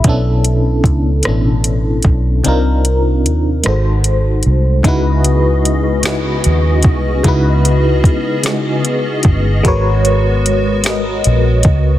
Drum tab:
HH |xxxxxx|xxxxxx|xxxxxx|xxxxxx|
SD |---r--|---r--|---o--|---o--|
BD |o-o--o|------|o----o|o-o--o|

HH |xxxxxx|
SD |---o--|
BD |o----o|